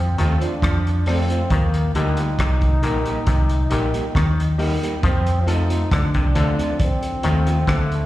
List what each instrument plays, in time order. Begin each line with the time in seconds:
Already playing: fingered electric bass F2, trombone C4
0.18 fingered electric bass D#2, clav D#3, clean electric guitar F3 A3 C4 F4, upright piano C4 F4 A4, closed hi-hat
0.41 clean electric guitar F3 A3 C4 F4, trombone D4, closed hi-hat
0.62 fingered electric bass F2, clav F3, kick, cross-stick, closed hi-hat
0.87 closed hi-hat
1.06 clean electric guitar F3 A3 C4 F4, upright piano C4 F4 A4, trombone C4, cross-stick, open hi-hat
1.30 clean electric guitar F3 A3 C4 F4, closed hi-hat
1.50 fingered electric bass D#2, clav D#3, trombone A#3, kick, closed hi-hat
1.74 closed hi-hat
1.95 fingered electric bass D2, clav D3, clean electric guitar G3 A#3 D#4 G4, upright piano D#4 G4 A#4, trombone D#4, closed hi-hat
2.17 clean electric guitar G3 A#3 D#4 G4, closed hi-hat
2.39 fingered electric bass C2, clav C3, kick, cross-stick, closed hi-hat
2.61 kick, closed hi-hat
2.82 fingered electric bass A#1, clav A#2, clean electric guitar G3 A#3 D#4 G4, upright piano D#4 G4 A#4, closed hi-hat
3.06 clean electric guitar G3 A#3 D#4 G4, closed hi-hat
3.27 fingered electric bass C2, clav C3, kick, closed hi-hat
3.49 closed hi-hat
3.70 fingered electric bass A#1, clav A#2, clean electric guitar G3 A#3 D#4 G4, upright piano D#4 G4 A#4, closed hi-hat
3.94 clean electric guitar G3 A#3 D#4 G4, closed hi-hat
4.15 fingered electric bass D#2, clav D#3, kick, cross-stick, closed hi-hat
4.40 closed hi-hat
4.58 clean electric guitar G3 A#3 D#4 G4, upright piano D#4 G4 A#4, open hi-hat
4.82 clean electric guitar G3 A#3 D#4 G4, closed hi-hat
5.03 fingered electric bass F2, clav F3, trombone C4, kick, closed hi-hat
5.26 closed hi-hat
5.41 trombone F4
5.46 clean electric guitar F3 A3 C4 F4, upright piano C4 F4 A4, trombone D#4, closed hi-hat
5.70 clean electric guitar F3 A3 C4 F4, closed hi-hat
5.91 fingered electric bass D2, clav D3, trombone D4, kick, cross-stick, closed hi-hat
6.14 fingered electric bass C2, clav C3, kick, closed hi-hat
6.35 fingered electric bass D2, clav D3, clean electric guitar F3 A3 C4 F4, upright piano C4 F4 A4, closed hi-hat
6.58 clean electric guitar F3 A3 C4 F4, closed hi-hat
6.79 trombone C4, kick, closed hi-hat
7.02 upright piano F4 A4, closed hi-hat
7.23 fingered electric bass D#2, clav D#3, clean electric guitar F3 A3 C4 F4, upright piano C4 F4 A4, closed hi-hat
7.46 clean electric guitar F3 A3 C4 F4, closed hi-hat
7.67 fingered electric bass D2, clav D3, trombone A3, kick, cross-stick, closed hi-hat
7.92 closed hi-hat